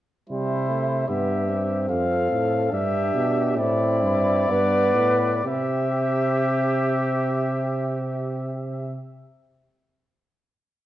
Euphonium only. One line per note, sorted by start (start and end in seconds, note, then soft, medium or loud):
0.29 0.70 G3 medium
0.69 1.07 A3 medium
1.08 1.47 B3 medium
1.48 2.73 C4 medium
2.71 3.59 D4 medium
3.58 4.51 C4 medium
4.49 5.45 B3 medium
5.45 9.00 C4 medium